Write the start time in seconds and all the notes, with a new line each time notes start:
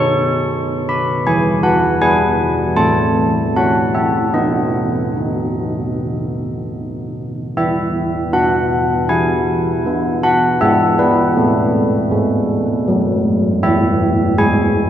Already playing: B3 D#4 C#6
0.89 B5
1.27 E3 G#5
1.63 F#5
2.01 E4 B4 G#5
2.76 A3 A5
3.56 E4 C#5 F#5
3.95 E5
4.34 B3 D#5
5.16 D#4
7.57 E3 B4 E5
8.33 B3 F#5
9.09 E4 G#5
9.86 B3
10.23 F#5
10.61 G#3 B4 E5
10.99 B4
11.37 A3
12.11 G#3
12.88 F#3
13.63 E3 B4 E5
14.38 G#3 G#5